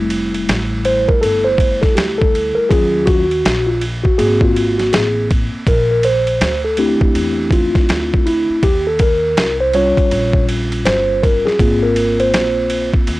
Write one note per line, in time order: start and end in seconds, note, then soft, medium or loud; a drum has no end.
0.00 0.45 F1 medium
0.00 2.67 G3 medium
0.00 2.67 A3 medium
0.00 2.67 E4 medium
0.10 ride medium
0.34 ride soft
0.49 1.06 A1 medium
0.49 snare loud
0.49 hi-hat pedal soft
0.49 ride medium
0.85 1.09 C5 medium
0.85 ride medium
1.08 1.23 A#4 medium
1.08 kick medium
1.21 1.80 G1 loud
1.21 1.46 A4 medium
1.21 ride medium
1.44 1.79 C5 medium
1.58 kick medium
1.58 ride medium
1.81 1.96 A4 medium
1.81 kick medium
1.81 snare soft
1.81 ride soft
1.95 2.54 D2 medium
1.95 2.20 G4 medium
1.95 snare loud
1.95 hi-hat pedal soft
1.95 ride medium
2.18 2.57 A4 medium
2.18 kick medium
2.35 ride medium
2.55 2.70 A#4 medium
2.55 muted upright bass stroke soft
2.69 3.41 D#2 loud
2.69 3.23 F#3 medium
2.69 3.23 C#4 medium
2.69 3.24 F4 medium
2.69 3.08 G#4 loud
2.69 kick loud
2.69 ride medium
3.06 3.69 F#4 medium
3.06 kick loud
3.06 ride medium
3.31 ride soft
3.45 4.02 A#1 medium
3.45 snare loud
3.45 hi-hat pedal medium
3.45 ride medium
3.67 3.83 F4 medium
3.81 ride medium
4.04 4.17 F#4 medium
4.04 kick medium
4.18 4.89 G#1 loud
4.18 5.63 A#3 medium
4.18 5.63 C4 soft
4.18 4.77 F#4 medium
4.18 4.42 G#4 medium
4.18 ride medium
4.41 4.76 F4 medium
4.41 kick medium
4.56 ride medium
4.78 4.93 F#4 medium
4.78 snare soft
4.78 ride soft
4.93 5.50 A1 medium
4.93 5.27 G#4 medium
4.93 snare loud
4.93 hi-hat pedal soft
4.93 ride medium
5.31 kick medium
5.31 ride medium
5.53 muted upright bass stroke soft
5.67 6.37 A#1 loud
5.67 5.90 A#4 loud
5.67 kick loud
5.67 ride medium
5.91 6.05 A#4 medium
6.03 6.60 C5 medium
6.03 ride medium
6.27 ride soft
6.41 6.98 D2 loud
6.41 snare loud
6.41 hi-hat pedal medium
6.41 ride medium
6.65 6.79 A4 medium
6.77 8.59 A3 medium
6.77 8.59 C4 medium
6.77 8.59 D4 medium
6.77 8.25 E4 medium
6.77 7.55 G4 medium
6.77 ride medium
7.01 kick medium
7.15 7.72 E2 medium
7.15 ride medium
7.51 8.29 F4 medium
7.51 kick medium
7.51 ride medium
7.75 muted upright bass stroke soft
7.75 kick medium
7.75 snare soft
7.75 ride soft
7.89 8.46 D2 medium
7.89 snare loud
7.89 hi-hat pedal soft
7.89 ride medium
8.14 kick medium
8.26 8.64 E4 medium
8.26 ride medium
8.50 muted upright bass stroke soft
8.63 9.33 D#2 loud
8.63 8.87 G4 loud
8.63 kick loud
8.63 ride medium
8.87 9.01 A4 medium
8.99 9.56 A#4 loud
8.99 kick loud
8.99 ride medium
9.37 9.94 C2 medium
9.37 snare loud
9.37 hi-hat pedal medium
9.37 ride medium
9.60 9.75 C5 medium
9.73 11.55 G3 medium
9.73 11.56 C#4 medium
9.73 11.56 F4 medium
9.73 10.45 C#5 loud
9.73 ride medium
9.97 kick medium
9.97 ride soft
10.11 10.82 A#1 loud
10.11 ride medium
10.33 kick medium
10.49 ride medium
10.72 ride soft
10.85 11.42 G1 medium
10.85 11.24 C5 loud
10.85 snare loud
10.85 hi-hat pedal medium
10.85 ride medium
11.23 11.46 A#4 medium
11.23 kick medium
11.23 ride medium
11.45 11.84 G#4 medium
11.45 muted upright bass stroke soft
11.45 snare soft
11.59 12.34 G#1 medium
11.59 13.20 A#3 medium
11.59 13.20 C4 medium
11.59 13.20 F4 medium
11.59 kick loud
11.59 ride medium
11.83 12.21 A#4 medium
11.96 ride medium
12.20 12.90 C5 medium
12.20 ride soft
12.34 12.91 A#1 medium
12.34 snare loud
12.34 hi-hat pedal medium
12.34 ride medium
12.70 ride medium
12.93 kick medium
13.07 13.20 D#2 loud
13.07 ride medium